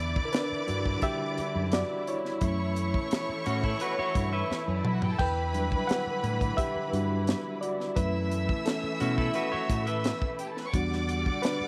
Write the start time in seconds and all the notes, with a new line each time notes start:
Already playing: E2 D3 E3 E4 D5 D6
0.16 kick
0.25 A#4
0.33 D4 B4, snare, closed hi-hat
0.52 muted fingered electric bass stroke
0.67 G2 G3 D4 F#4, closed hi-hat
0.86 kick
1.02 G4 E5, kick, closed hi-hat
1.38 muted fingered electric bass stroke, closed hi-hat
1.55 F#2
1.72 F#4 D5, snare, closed hi-hat
2.07 E4 C#5, closed hi-hat
2.25 snare
2.41 F#2 E3 A3 C#4 E4 C#5 C#6, kick, closed hi-hat
2.76 closed hi-hat
2.94 kick
3.11 snare, closed hi-hat
3.29 muted fingered electric bass stroke
3.46 A2 C#4 F#4, closed hi-hat
3.64 E4 A4, kick
3.80 F#4 B4, closed hi-hat
3.99 F#4 C#5, muted fingered electric bass stroke
4.15 G2, kick, closed hi-hat
4.33 B4 E5
4.50 muted fingered electric bass stroke, snare
4.67 F#2 C#4 C#5
4.76 D4 D5
4.85 F#3 E4 E5, mid tom
4.94 F#4 F#5
5.02 G4 G5, floor tom
5.11 A4 A5
5.19 E2 D3 E3 B4 G5 B5, kick, splash
5.53 F#3 G3 D4, closed hi-hat
5.72 kick
5.87 B4 F#5, snare, closed hi-hat
6.06 muted fingered electric bass stroke
6.23 A2, closed hi-hat
6.41 kick, closed hi-hat
6.57 G4 E5, kick, closed hi-hat
6.75 muted fingered electric bass stroke
6.93 G2 G3 D4 F#4, closed hi-hat
7.27 snare, closed hi-hat
7.61 F#4 D5, closed hi-hat
7.80 snare
7.96 F#2 E3 A3 C#4 E4 B4 E5 E6, kick, closed hi-hat
8.31 closed hi-hat
8.49 kick
8.66 C#4 A4, snare, closed hi-hat
8.83 muted fingered electric bass stroke
9.00 B2 A3 C#4 E4 F#4, closed hi-hat
9.18 E4 A4, kick
9.34 F#4 B4, closed hi-hat
9.52 F#4 C#5, muted fingered electric bass stroke
9.70 A2, kick, closed hi-hat
9.87 B4 E5, closed hi-hat
10.04 snare, closed hi-hat
10.22 kick
10.39 G4 G5, closed hi-hat
10.48 A4 A5
10.57 B4 B5, snare
10.65 C#5 C#6
10.73 E2 D3 G3 D4 F#4 D5 F#5 D6, kick, closed hi-hat
10.93 snare
11.09 closed hi-hat
11.26 kick
11.42 D4 B4, snare, closed hi-hat
11.61 muted fingered electric bass stroke